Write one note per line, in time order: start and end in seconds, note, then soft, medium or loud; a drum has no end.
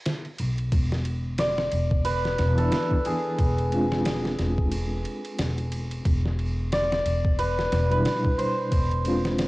0.05 snare loud
0.05 ride medium
0.25 ride soft
0.38 0.69 B1 medium
0.38 ride medium
0.58 ride soft
0.72 1.69 E1 medium
0.72 kick loud
0.72 ride medium
0.92 snare soft
1.05 ride medium
1.38 3.85 D5 loud
1.38 snare loud
1.38 ride medium
1.58 snare medium
1.72 2.36 E1 medium
1.72 ride medium
1.91 kick medium
2.05 4.78 B4 loud
2.05 ride medium
2.25 snare soft
2.39 2.69 E1 medium
2.39 snare soft
2.39 ride medium
2.57 3.36 E3 medium
2.57 3.37 B3 medium
2.57 3.38 D4 medium
2.57 3.12 A4 medium
2.57 ride soft
2.61 3.38 E4 medium
2.72 snare loud
2.72 ride medium
2.91 kick medium
3.05 6.09 G#4 medium
3.05 ride medium
3.39 4.36 E1 medium
3.39 kick loud
3.39 ride medium
3.58 ride soft
3.70 6.03 G#3 medium
3.70 6.03 C4 medium
3.70 6.04 D4 medium
3.70 6.05 F4 medium
3.70 ride medium
3.92 snare medium
4.05 snare loud
4.05 ride medium
4.25 snare soft
4.39 5.03 E1 medium
4.39 snare soft
4.39 ride medium
4.58 kick medium
4.71 ride medium
5.05 ride medium
5.25 ride soft
5.38 6.03 E1 medium
5.38 snare loud
5.38 ride medium
5.58 ride soft
5.72 ride medium
5.91 ride soft
6.05 7.03 E1 medium
6.05 kick loud
6.05 ride medium
6.26 snare soft
6.39 ride medium
6.72 9.19 D5 loud
6.72 snare loud
6.72 ride medium
6.92 snare medium
7.06 7.69 E1 medium
7.06 ride medium
7.25 kick medium
7.39 7.91 B4 medium
7.39 ride medium
7.59 snare soft
7.72 8.02 E1 medium
7.72 snare soft
7.72 ride medium
7.90 8.70 B2 medium
7.90 8.69 G3 medium
7.90 8.71 D4 medium
7.90 8.71 E4 medium
7.90 8.44 B4 medium
7.90 ride soft
8.05 snare loud
8.05 ride medium
8.25 kick medium
8.38 9.48 C5 medium
8.38 ride medium
8.72 9.48 E1 medium
8.72 kick loud
8.72 ride medium
8.91 ride soft
9.04 9.48 G#3 medium
9.04 9.48 C4 medium
9.04 9.48 D4 medium
9.04 ride medium
9.08 9.48 F4 medium
9.25 snare medium
9.39 snare loud
9.39 ride medium